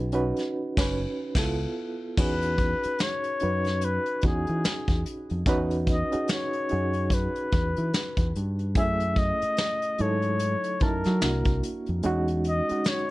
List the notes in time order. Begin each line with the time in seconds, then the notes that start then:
Already playing: B1 C#4 D#4 F#4 G#4 B4
0.12 C#4 D#4 F#4 B4, closed hi-hat
0.36 snare, closed hi-hat
0.77 F#1 C#4 B4, kick, snare, crash
1.35 C#2 B3 E4 A4, kick, snare, crash
1.43 F4
2.17 E2 C#4 D#4 F#4 G#4 B4, kick, crash
2.42 closed hi-hat
2.58 kick, closed hi-hat
2.83 muted fingered electric bass stroke, closed hi-hat
2.99 C#5, snare, closed hi-hat
3.24 closed hi-hat
3.40 F#2 C#4 D#4 F#4 B4, closed hi-hat
3.64 snare, closed hi-hat
3.81 B4, closed hi-hat
4.06 closed hi-hat
4.21 E2 C#4 D#4 F#4, kick, closed hi-hat
4.25 G#4
4.47 E3, closed hi-hat
4.64 muted fingered electric bass stroke, snare, closed hi-hat
4.88 E2, kick, closed hi-hat
5.06 closed hi-hat
5.29 F2, closed hi-hat
5.46 E2 C#4 D#4 F#4 B4, kick, closed hi-hat
5.71 closed hi-hat
5.87 D#5, kick, closed hi-hat
6.12 C#4 D#4 F#4 G#4, muted fingered electric bass stroke, closed hi-hat
6.28 snare, closed hi-hat
6.32 C#5
6.53 closed hi-hat
6.69 F#2 C#4 D#4 F#4 G#4, closed hi-hat
6.93 closed hi-hat
7.10 B4, kick, closed hi-hat
7.36 closed hi-hat
7.52 E2, kick, closed hi-hat
7.76 E3, closed hi-hat
7.94 snare, closed hi-hat
8.17 E2, kick, closed hi-hat
8.36 G2, closed hi-hat
8.59 closed hi-hat
8.75 F#2 G#3 C#4 E4 G#4 E5, kick, closed hi-hat
8.82 A3
9.00 closed hi-hat
9.16 D#5, kick, closed hi-hat
9.42 muted fingered electric bass stroke, closed hi-hat
9.57 snare, closed hi-hat
9.82 closed hi-hat
9.98 G#2 F#3 D#4 E4 A4 C#5, closed hi-hat
10.22 closed hi-hat
10.39 closed hi-hat
10.64 closed hi-hat
10.80 F#2 F#3 D#4 E4 A#4 A5, kick, closed hi-hat
11.04 F#3, snare, closed hi-hat
11.21 C2 A#3 D4 E4 F#4, snare, closed hi-hat
11.45 C2, kick, closed hi-hat
11.63 closed hi-hat
11.86 F2, closed hi-hat
12.03 E2 G#3 C#4 D#4 F#4, closed hi-hat
12.28 closed hi-hat
12.44 closed hi-hat
12.48 D#5
12.69 G#3 C#4 D#4 F#4, muted fingered electric bass stroke, closed hi-hat
12.84 snare, closed hi-hat
12.89 C#5